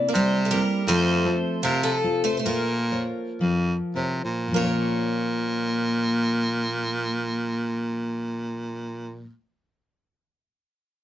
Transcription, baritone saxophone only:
0.14 0.62 C3 medium
0.88 1.37 F2 loud
1.63 1.98 C3 medium
2.46 3.07 A#2 medium
3.40 3.76 F2 medium
3.95 4.22 C3 medium
4.25 4.52 A#2 medium
4.55 9.31 A#2 medium

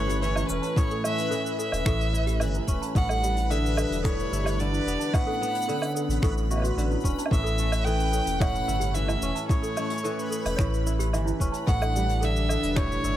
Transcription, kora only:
0.00 0.76 A2 medium
0.00 0.22 E3 medium
0.00 1.03 A3 medium
0.00 2.12 E4 medium
0.23 1.31 E3 medium
0.50 2.67 C#4 medium
0.77 1.84 A2 loud
1.04 3.04 A3 medium
1.31 2.40 E3 medium
1.86 2.95 A2 medium
2.13 3.70 E4 medium
2.41 3.56 E3 medium
2.68 3.56 C#4 medium
2.96 3.55 A2 medium
3.23 3.55 G3 medium
3.50 4.60 D3 medium
4.05 4.64 A2 medium
4.33 5.89 E4 medium
4.60 5.68 D3 medium
4.87 5.41 B3 medium
5.15 5.73 A2 medium
5.41 7.37 B3 medium
5.69 6.27 D3 medium
6.23 6.82 A2 medium
6.51 7.97 F#4 medium
6.78 7.36 D3 medium
7.04 8.78 C#4 medium
7.32 8.40 A2 medium
7.59 9.76 A3 medium
7.87 8.95 E3 medium
8.41 9.49 A2 medium
8.68 10.85 E4 medium
8.95 10.04 E3 medium
9.23 11.39 C#4 medium
9.50 10.58 A2 medium
9.77 11.77 A3 medium
10.04 11.13 E3 medium
10.59 11.67 A2 medium
10.87 12.43 E4 medium
11.14 12.29 E3 medium
11.41 12.29 C#4 medium
11.68 12.27 A2 loud
11.95 12.27 G3 medium
12.23 13.17 D3 medium
12.76 13.17 A2 medium
13.04 13.17 E4 medium

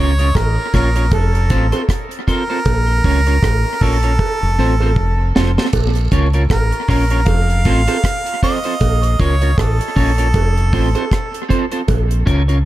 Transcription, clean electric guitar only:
0.00 0.11 C#4 medium
0.00 0.12 F4 medium
0.00 0.12 A#4 medium
0.00 0.12 C#5 loud
0.19 0.28 C#4 medium
0.19 0.28 F4 medium
0.19 0.28 A#4 medium
0.19 0.28 C#5 medium
0.73 0.88 C#4 medium
0.73 0.88 F4 medium
0.73 0.89 A#4 medium
0.73 0.89 C#5 loud
0.96 1.05 C#4 soft
0.96 1.05 F4 soft
0.96 1.04 A#4 medium
0.96 1.04 C#5 medium
1.50 1.65 C4 medium
1.50 1.65 F4 loud
1.50 1.66 A4 medium
1.50 1.66 C5 loud
1.72 1.82 C4 medium
1.72 1.81 F4 medium
1.72 1.81 A4 medium
1.72 1.81 C5 medium
2.27 2.42 C4 medium
2.27 2.42 F4 medium
2.27 2.42 A4 medium
2.27 2.43 C5 medium
2.50 2.59 C4 soft
2.50 2.59 F4 medium
2.50 2.58 A4 medium
2.50 2.58 C5 medium
3.05 3.19 C#4 medium
3.05 3.19 F4 medium
3.05 3.19 A#4 medium
3.05 3.19 C#5 medium
3.27 3.36 C#4 medium
3.27 3.36 F4 medium
3.27 3.35 A#4 medium
3.27 3.35 C#5 medium
3.82 3.96 C#4 medium
3.82 3.96 F4 medium
3.82 3.96 A#4 medium
3.82 3.97 C#5 medium
4.04 4.12 C#4 soft
4.04 4.12 F4 soft
4.04 4.12 A#4 medium
4.04 4.12 C#5 medium
4.58 4.73 C4 medium
4.58 4.73 F4 medium
4.58 4.73 A4 medium
4.58 4.73 C5 loud
4.81 4.90 C4 soft
4.81 4.90 F4 soft
4.81 4.89 A4 medium
4.81 4.89 C5 medium
5.35 5.50 C4 medium
5.35 5.50 F4 medium
5.35 5.50 A4 medium
5.35 5.50 C5 medium
5.58 5.66 C4 soft
5.58 5.66 F4 medium
5.58 5.66 A4 medium
5.58 5.66 C5 medium
6.12 6.26 C#4 medium
6.12 6.27 F4 medium
6.12 6.27 A#4 medium
6.12 6.27 C#5 loud
6.34 6.43 C#4 medium
6.34 6.43 F4 medium
6.34 6.42 A#4 medium
6.34 6.42 C#5 medium
6.88 7.03 C#4 medium
6.88 7.03 F4 medium
6.88 7.03 A#4 medium
6.88 7.04 C#5 medium
7.11 7.20 C#4 soft
7.11 7.20 F4 medium
7.11 7.19 A#4 medium
7.11 7.19 C#5 medium
7.66 7.80 C4 loud
7.66 7.80 F4 loud
7.66 7.81 A4 loud
7.66 7.81 C5 medium
7.88 7.96 C4 medium
7.88 7.96 F4 medium
7.88 7.96 A4 medium
7.88 7.96 C5 medium
8.43 8.57 C4 medium
8.43 8.57 F4 medium
8.43 8.57 A4 medium
8.43 8.58 C5 loud
8.65 8.74 C4 medium
8.65 8.73 F4 medium
8.65 8.73 A4 medium
8.65 8.73 C5 medium
9.19 9.34 C#4 medium
9.19 9.34 F4 medium
9.19 9.34 A#4 medium
9.19 9.34 C#5 loud
9.42 9.50 C#4 soft
9.42 9.50 F4 medium
9.42 9.50 A#4 medium
9.42 9.50 C#5 medium
9.96 10.10 C#4 medium
9.96 10.11 F4 medium
9.96 10.11 A#4 medium
9.96 10.11 C#5 medium
10.18 10.27 C#4 soft
10.18 10.27 F4 medium
10.18 10.27 A#4 medium
10.18 10.27 C#5 medium
10.73 10.87 C4 medium
10.73 10.88 F4 loud
10.73 10.88 A4 loud
10.73 10.88 C5 loud
10.95 11.04 C4 soft
10.95 11.04 F4 medium
10.95 11.04 A4 medium
10.95 11.03 C5 medium
11.49 11.64 C4 medium
11.49 11.64 F4 medium
11.49 11.64 A4 medium
11.49 11.65 C5 loud
11.72 11.81 C4 soft
11.72 11.81 F4 soft
11.72 11.81 A4 medium
11.72 11.80 C5 medium
12.26 12.41 C#4 medium
12.26 12.41 F4 medium
12.26 12.41 A#4 loud
12.26 12.41 C#5 medium
12.48 12.58 C#4 soft
12.48 12.58 F4 medium
12.48 12.57 A#4 medium
12.48 12.57 C#5 medium

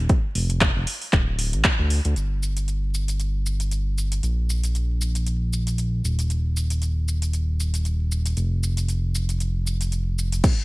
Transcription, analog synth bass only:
0.35 0.72 F1 loud
0.76 0.85 F1 medium
1.13 1.55 D1 loud
1.53 1.63 A1 loud
1.79 2.00 D2 medium
2.05 2.14 D2 medium
2.16 4.21 G1 medium
4.23 6.02 A#1 medium
6.04 8.35 D#1 medium
8.37 10.42 F1 medium

